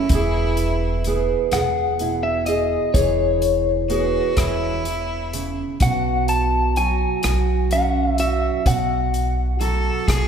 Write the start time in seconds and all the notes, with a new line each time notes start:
Already playing: A3 C#4 E4
0.09 E1 E3 B3, kick, closed hi-hat
0.14 E4 G#4
0.57 closed hi-hat
1.04 B3 G#4, closed hi-hat
1.52 E1 G#4 F#5, cross-stick, closed hi-hat
1.99 B2 E4, closed hi-hat
2.23 E5
2.46 G#4 D#5, closed hi-hat
2.94 E1 E3 G#4 C#5, kick, closed hi-hat
3.42 closed hi-hat
3.90 B3 F#4 G#4, closed hi-hat
4.37 E1 E3 E4, kick, cross-stick, closed hi-hat
4.85 closed hi-hat
5.33 C#3, closed hi-hat
5.80 B1 B2 F#4 F#5, kick, closed hi-hat
6.28 A5, closed hi-hat
6.76 F#3 F#4 G#5, closed hi-hat
7.23 B1 F#4, cross-stick, closed hi-hat
7.71 F#2 C#4 F#5, closed hi-hat
8.18 F#4 E5, closed hi-hat
8.66 B1 B2 F#4 F#5, kick, closed hi-hat
9.14 closed hi-hat
9.60 F#3 F#4 A4, closed hi-hat
10.08 B1 F#4 G#4, kick, cross-stick, closed hi-hat